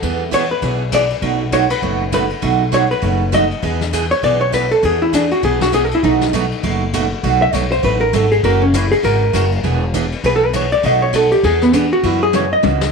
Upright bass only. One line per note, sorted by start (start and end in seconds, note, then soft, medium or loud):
0.02 0.51 E2 medium
0.62 1.11 B1 medium
1.22 1.70 B1 medium
1.82 2.31 F#1 medium
2.42 2.91 B1 medium
3.03 3.51 F#1 medium
3.63 4.11 E2 medium
4.23 4.71 B1 medium
4.83 5.31 E2 medium
5.43 5.91 B1 medium
6.03 6.51 B1 medium
6.63 7.11 F#1 medium
7.23 7.47 B1 medium
7.54 7.79 B1 medium
7.84 8.09 A1 medium
8.13 8.39 G#1 medium
8.43 8.91 F#1 medium
9.03 9.29 G#1 medium
9.34 9.59 F#1 medium
9.64 10.12 E1 medium
10.24 10.72 B1 medium
10.84 11.32 B1 medium
11.43 11.92 E2 medium
12.03 12.51 F#2 medium
12.64 12.92 C#2 medium